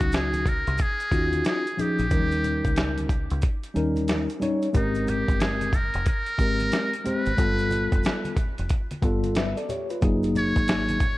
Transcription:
Already playing: F#3 C#4 D#4 F#4
0.00 C#2, kick, closed hi-hat, maracas
0.12 G#4, snare, closed hi-hat, maracas
0.33 closed hi-hat, high conga, maracas
0.46 A#4, kick, closed hi-hat, low conga, maracas
0.67 C2, closed hi-hat, maracas
0.78 kick, closed hi-hat, maracas
0.82 G#4
1.00 closed hi-hat, maracas
1.11 D#2 C#4 D#4 F4 F#4, kick, closed hi-hat, maracas
1.33 closed hi-hat, high conga, maracas
1.45 G#4, snare, closed hi-hat, maracas
1.67 closed hi-hat, maracas
1.77 F3 C#4 D#4 G4 G#4, closed hi-hat, low conga, maracas
1.98 A#1, closed hi-hat, maracas
2.10 D#2 F3 C#4 D#4 A#4, kick, closed hi-hat, maracas
2.17 G3
2.31 closed hi-hat, maracas
2.44 closed hi-hat, low conga, maracas
2.65 C#2, kick, closed hi-hat, maracas
2.76 snare, closed hi-hat, maracas
2.98 closed hi-hat, high conga, maracas
3.09 kick, closed hi-hat, low conga, maracas
3.30 C#2, closed hi-hat, maracas
3.42 kick, closed hi-hat, maracas
3.64 closed hi-hat, maracas
3.74 D#2 G3 C#4 D#4 A#4, closed hi-hat, maracas
3.96 closed hi-hat, high conga, maracas
4.08 snare, closed hi-hat, maracas
4.29 closed hi-hat, maracas
4.40 G3 C#4 D#4 C#5, closed hi-hat, low conga, maracas
4.62 closed hi-hat, maracas
4.73 G#1 G#3 C4 D#4 G4 A#4, kick, closed hi-hat, maracas
4.95 closed hi-hat, maracas
5.08 G4, closed hi-hat, low conga, maracas
5.28 G1, kick, closed hi-hat, maracas
5.40 G#4, snare, closed hi-hat, maracas
5.61 closed hi-hat, high conga, maracas
5.73 A#4, kick, closed hi-hat, low conga, maracas
5.94 F1, closed hi-hat, maracas
6.06 A#4, kick, closed hi-hat, maracas
6.26 closed hi-hat, maracas
6.38 G#1 G#3 C4 G4 A#4, kick, closed hi-hat, maracas
6.60 closed hi-hat, high conga, maracas
6.72 snare, closed hi-hat, maracas
6.94 closed hi-hat, maracas
7.04 G#3 C4 G4 C5, closed hi-hat, low conga, maracas
7.08 B4
7.26 G#1, closed hi-hat, maracas
7.37 G1 G3 B3 F4 A4, kick, closed hi-hat, maracas
7.58 closed hi-hat, maracas
7.71 closed hi-hat, high conga, low conga, maracas
7.92 F1, kick, closed hi-hat, maracas
8.03 snare, closed hi-hat, high conga, maracas
8.25 closed hi-hat, high conga, maracas
8.37 kick, closed hi-hat, low conga, maracas
8.58 F1, closed hi-hat, maracas
8.69 kick, closed hi-hat, maracas
8.91 closed hi-hat, high conga, maracas
9.02 G1 G3 B3 F4 A4, kick, closed hi-hat, maracas
9.24 closed hi-hat, high conga, maracas
9.35 B4 E5, snare, closed hi-hat, maracas
9.57 A4 D5, closed hi-hat, maracas
9.69 G4 C#5, closed hi-hat, low conga, maracas
9.90 F4 B4, closed hi-hat, maracas
10.01 F#1 F#3 A#3 D#4 G#4, kick, closed hi-hat, maracas
10.23 closed hi-hat, maracas
10.35 C#5, closed hi-hat, low conga, maracas
10.56 G#1, kick, closed hi-hat, maracas
10.68 snare, closed hi-hat, maracas
10.89 closed hi-hat, high conga, maracas
11.00 kick, closed hi-hat, low conga, maracas

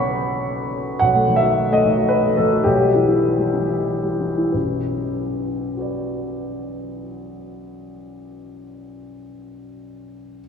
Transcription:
Already playing: B1 D3 B3 F#4 B4 C#5 F#5 B5 C#6
0.99 B1 F#5
1.14 A3
1.28 D#3
1.36 E5
1.43 F#4
1.70 A3 D#5
1.84 D#3
1.97 F#4
2.09 B4
2.25 A3
2.37 D#3 A4
2.53 F#4
2.64 B1 G4
2.81 G3
2.94 E3
3.08 E4
3.39 G3
3.53 E3
3.69 E4
4.04 G3
4.20 E3
4.38 E4
4.52 B1 F#2 B4
5.77 F#4 B4 D5

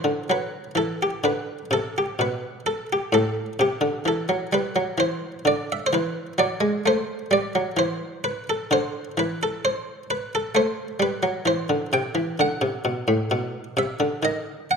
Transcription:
Already playing: C5
0.04 D3
0.30 F#3 B4
0.75 E3 A4
1.02 G4
1.24 D3 B4
1.71 C3 A4
1.98 G4
2.19 B2 B4
2.66 A4
2.93 G4
3.12 A2 A4
3.59 C3 G4
3.81 D3
4.05 E3 A4
4.29 F#3
4.53 G3 B4
4.76 F#3
4.98 E3 C5
5.45 D3 D5
5.72 E5
5.86 C5
5.93 E3 B4
6.38 F#3 D5
6.61 G#3
6.86 A3 C5
7.31 G3 D5
7.55 F#3
7.77 E3 C5
8.24 B4
8.50 A4
8.71 D3 C5
9.17 E3 B4
9.43 A4
9.65 C5
10.10 B4
10.35 A4
10.55 A3 C5
11.00 G3 B4
11.23 F#3
11.46 E3 C5
11.69 D3
11.93 C3 G5
12.15 E3
12.39 D3 F#5
12.61 C3
12.85 B2
13.08 A2
13.31 B2
13.77 C3 E5
14.00 D3
14.23 D#3 D#5
14.71 F#5

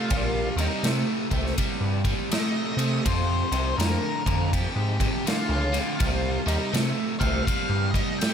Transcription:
Already playing: F4
0.10 A#1 C3 G3, kick, ride
0.56 D#2 C3 G3, ride
0.60 D#4
0.83 C3 A3, snare, ride
1.31 C2 C3 A3, kick, ride
1.46 snare
1.58 C3 G3, kick, ride
1.81 G2
2.04 C3 G3, kick, ride
2.32 C3 A3 D#5, snare, ride
2.77 C3 A3, ride
3.05 F2 C3 C5, kick, ride
3.52 C2 F2 C3, ride
3.78 F2 D3 A#4, snare, ride
4.26 F2 D3, kick, ride
4.53 F2 C3 G4, kick, ride
4.76 G#2
5.00 F2 C3, kick, ride
5.26 F2 D3 F4, snare, ride
5.49 C#2
5.73 F2 D3, snare, ride
5.99 C2 C3 G3, kick, ride
6.46 D#2 C3 G3 D#4, ride
6.73 C3 A3, snare, ride
7.20 C2 C3 A3 F5, kick, ride
7.45 C3 G3 F5, kick, ride
7.69 G2
7.91 C3 G3 D#5, kick
7.95 ride
8.18 C3 A3 G5, ride
8.23 snare

